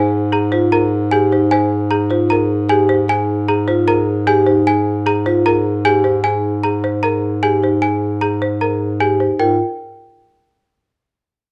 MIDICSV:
0, 0, Header, 1, 5, 480
1, 0, Start_track
1, 0, Key_signature, -4, "major"
1, 0, Tempo, 394737
1, 1835, Time_signature, 4, 2, 24, 8
1, 14000, End_track
2, 0, Start_track
2, 0, Title_t, "Xylophone"
2, 0, Program_c, 0, 13
2, 0, Note_on_c, 0, 80, 78
2, 228, Note_off_c, 0, 80, 0
2, 398, Note_on_c, 0, 82, 61
2, 708, Note_off_c, 0, 82, 0
2, 878, Note_on_c, 0, 82, 65
2, 1188, Note_off_c, 0, 82, 0
2, 1355, Note_on_c, 0, 80, 75
2, 1667, Note_off_c, 0, 80, 0
2, 1839, Note_on_c, 0, 80, 82
2, 2149, Note_off_c, 0, 80, 0
2, 2318, Note_on_c, 0, 82, 65
2, 2628, Note_off_c, 0, 82, 0
2, 2797, Note_on_c, 0, 82, 64
2, 3108, Note_off_c, 0, 82, 0
2, 3276, Note_on_c, 0, 80, 83
2, 3588, Note_off_c, 0, 80, 0
2, 3762, Note_on_c, 0, 80, 84
2, 4070, Note_off_c, 0, 80, 0
2, 4237, Note_on_c, 0, 82, 67
2, 4548, Note_off_c, 0, 82, 0
2, 4715, Note_on_c, 0, 82, 66
2, 5027, Note_off_c, 0, 82, 0
2, 5196, Note_on_c, 0, 80, 86
2, 5508, Note_off_c, 0, 80, 0
2, 5679, Note_on_c, 0, 80, 83
2, 5989, Note_off_c, 0, 80, 0
2, 6160, Note_on_c, 0, 82, 71
2, 6469, Note_off_c, 0, 82, 0
2, 6638, Note_on_c, 0, 82, 71
2, 6948, Note_off_c, 0, 82, 0
2, 7114, Note_on_c, 0, 80, 84
2, 7427, Note_off_c, 0, 80, 0
2, 7586, Note_on_c, 0, 80, 81
2, 7904, Note_off_c, 0, 80, 0
2, 8068, Note_on_c, 0, 82, 63
2, 8385, Note_off_c, 0, 82, 0
2, 8546, Note_on_c, 0, 82, 64
2, 8864, Note_off_c, 0, 82, 0
2, 9032, Note_on_c, 0, 80, 77
2, 9346, Note_off_c, 0, 80, 0
2, 9509, Note_on_c, 0, 80, 70
2, 9825, Note_off_c, 0, 80, 0
2, 9988, Note_on_c, 0, 82, 60
2, 10305, Note_off_c, 0, 82, 0
2, 10472, Note_on_c, 0, 82, 57
2, 10786, Note_off_c, 0, 82, 0
2, 10950, Note_on_c, 0, 80, 71
2, 11265, Note_off_c, 0, 80, 0
2, 11425, Note_on_c, 0, 79, 65
2, 11653, Note_off_c, 0, 79, 0
2, 14000, End_track
3, 0, Start_track
3, 0, Title_t, "Marimba"
3, 0, Program_c, 1, 12
3, 0, Note_on_c, 1, 72, 75
3, 227, Note_off_c, 1, 72, 0
3, 393, Note_on_c, 1, 68, 62
3, 631, Note_on_c, 1, 72, 72
3, 707, Note_off_c, 1, 68, 0
3, 881, Note_on_c, 1, 70, 60
3, 946, Note_off_c, 1, 72, 0
3, 1189, Note_off_c, 1, 70, 0
3, 1369, Note_on_c, 1, 68, 81
3, 1611, Note_on_c, 1, 72, 65
3, 1672, Note_off_c, 1, 68, 0
3, 1837, Note_off_c, 1, 72, 0
3, 1852, Note_on_c, 1, 72, 77
3, 2153, Note_off_c, 1, 72, 0
3, 2324, Note_on_c, 1, 68, 64
3, 2561, Note_on_c, 1, 72, 71
3, 2631, Note_off_c, 1, 68, 0
3, 2817, Note_on_c, 1, 70, 62
3, 2869, Note_off_c, 1, 72, 0
3, 3115, Note_off_c, 1, 70, 0
3, 3285, Note_on_c, 1, 68, 79
3, 3516, Note_on_c, 1, 72, 68
3, 3591, Note_off_c, 1, 68, 0
3, 3828, Note_off_c, 1, 72, 0
3, 4239, Note_on_c, 1, 68, 67
3, 4471, Note_on_c, 1, 72, 76
3, 4549, Note_off_c, 1, 68, 0
3, 4712, Note_on_c, 1, 70, 67
3, 4786, Note_off_c, 1, 72, 0
3, 5026, Note_off_c, 1, 70, 0
3, 5192, Note_on_c, 1, 68, 82
3, 5430, Note_on_c, 1, 72, 67
3, 5506, Note_off_c, 1, 68, 0
3, 5745, Note_off_c, 1, 72, 0
3, 6155, Note_on_c, 1, 68, 68
3, 6398, Note_on_c, 1, 72, 74
3, 6467, Note_off_c, 1, 68, 0
3, 6643, Note_on_c, 1, 70, 66
3, 6708, Note_off_c, 1, 72, 0
3, 6950, Note_off_c, 1, 70, 0
3, 7116, Note_on_c, 1, 68, 79
3, 7346, Note_on_c, 1, 72, 66
3, 7427, Note_off_c, 1, 68, 0
3, 7664, Note_off_c, 1, 72, 0
3, 8080, Note_on_c, 1, 68, 63
3, 8316, Note_on_c, 1, 72, 74
3, 8389, Note_off_c, 1, 68, 0
3, 8558, Note_on_c, 1, 70, 61
3, 8628, Note_off_c, 1, 72, 0
3, 8868, Note_off_c, 1, 70, 0
3, 9036, Note_on_c, 1, 68, 73
3, 9285, Note_on_c, 1, 72, 59
3, 9348, Note_off_c, 1, 68, 0
3, 9591, Note_off_c, 1, 72, 0
3, 9997, Note_on_c, 1, 68, 56
3, 10237, Note_on_c, 1, 72, 69
3, 10308, Note_off_c, 1, 68, 0
3, 10475, Note_on_c, 1, 70, 54
3, 10548, Note_off_c, 1, 72, 0
3, 10787, Note_off_c, 1, 70, 0
3, 10951, Note_on_c, 1, 68, 64
3, 11191, Note_on_c, 1, 72, 54
3, 11266, Note_off_c, 1, 68, 0
3, 11423, Note_on_c, 1, 70, 65
3, 11506, Note_off_c, 1, 72, 0
3, 11652, Note_off_c, 1, 70, 0
3, 14000, End_track
4, 0, Start_track
4, 0, Title_t, "Vibraphone"
4, 0, Program_c, 2, 11
4, 0, Note_on_c, 2, 68, 65
4, 230, Note_off_c, 2, 68, 0
4, 634, Note_on_c, 2, 65, 77
4, 883, Note_on_c, 2, 68, 61
4, 947, Note_off_c, 2, 65, 0
4, 1190, Note_off_c, 2, 68, 0
4, 1354, Note_on_c, 2, 67, 70
4, 1604, Note_on_c, 2, 63, 60
4, 1667, Note_off_c, 2, 67, 0
4, 1837, Note_on_c, 2, 68, 67
4, 1910, Note_off_c, 2, 63, 0
4, 2148, Note_off_c, 2, 68, 0
4, 2549, Note_on_c, 2, 65, 74
4, 2788, Note_on_c, 2, 68, 64
4, 2865, Note_off_c, 2, 65, 0
4, 3105, Note_off_c, 2, 68, 0
4, 3267, Note_on_c, 2, 67, 78
4, 3513, Note_on_c, 2, 63, 60
4, 3584, Note_off_c, 2, 67, 0
4, 3748, Note_on_c, 2, 68, 65
4, 3827, Note_off_c, 2, 63, 0
4, 4065, Note_off_c, 2, 68, 0
4, 4474, Note_on_c, 2, 65, 82
4, 4714, Note_on_c, 2, 68, 65
4, 4787, Note_off_c, 2, 65, 0
4, 5027, Note_off_c, 2, 68, 0
4, 5197, Note_on_c, 2, 67, 81
4, 5435, Note_on_c, 2, 63, 61
4, 5508, Note_off_c, 2, 67, 0
4, 5675, Note_on_c, 2, 68, 67
4, 5747, Note_off_c, 2, 63, 0
4, 5987, Note_off_c, 2, 68, 0
4, 6394, Note_on_c, 2, 65, 82
4, 6637, Note_on_c, 2, 68, 66
4, 6707, Note_off_c, 2, 65, 0
4, 6948, Note_off_c, 2, 68, 0
4, 7113, Note_on_c, 2, 67, 74
4, 7350, Note_on_c, 2, 63, 64
4, 7427, Note_off_c, 2, 67, 0
4, 7593, Note_on_c, 2, 68, 68
4, 7666, Note_off_c, 2, 63, 0
4, 7906, Note_off_c, 2, 68, 0
4, 8558, Note_on_c, 2, 68, 58
4, 8868, Note_off_c, 2, 68, 0
4, 9035, Note_on_c, 2, 67, 66
4, 9271, Note_on_c, 2, 63, 55
4, 9347, Note_off_c, 2, 67, 0
4, 9512, Note_on_c, 2, 68, 61
4, 9586, Note_off_c, 2, 63, 0
4, 9826, Note_off_c, 2, 68, 0
4, 10469, Note_on_c, 2, 68, 54
4, 10785, Note_off_c, 2, 68, 0
4, 10946, Note_on_c, 2, 67, 67
4, 11189, Note_on_c, 2, 63, 51
4, 11264, Note_off_c, 2, 67, 0
4, 11427, Note_on_c, 2, 65, 71
4, 11505, Note_off_c, 2, 63, 0
4, 11654, Note_off_c, 2, 65, 0
4, 14000, End_track
5, 0, Start_track
5, 0, Title_t, "Bass clarinet"
5, 0, Program_c, 3, 71
5, 0, Note_on_c, 3, 44, 70
5, 11291, Note_off_c, 3, 44, 0
5, 11430, Note_on_c, 3, 44, 54
5, 11656, Note_off_c, 3, 44, 0
5, 14000, End_track
0, 0, End_of_file